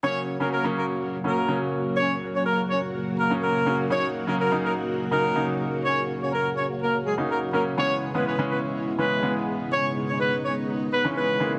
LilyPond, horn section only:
\new Staff \with { instrumentName = "Horn section" } { \time 4/4 \key fis \major \tempo 4 = 124 <cis' cis''>8 r16 <ais ais'>16 <ais ais'>8 <ais ais'>16 r8. <ais ais'>8. r8. | <cis' cis''>8 r16 <cis' cis''>16 <ais ais'>8 <cis' cis''>16 r8. <ais ais'>8 <ais ais'>8. r16 | <cis' cis''>8 r16 <ais ais'>16 <ais ais'>8 <ais ais'>16 r8. <ais ais'>8. r8. | <cis' cis''>8 r16 <cis' cis''>16 <ais ais'>8 <cis' cis''>16 r16 <ais ais'>8 <gis gis'>16 r16 <ais ais'>16 r16 <ais ais'>16 r16 |
<cis' cis''>8 r16 <b b'>16 <b b'>8 <b b'>16 r8. <b b'>8. r8. | <cis' cis''>8 r16 <cis' cis''>16 <b b'>8 <cis' cis''>16 r8. <b b'>8 <b b'>8. r16 | }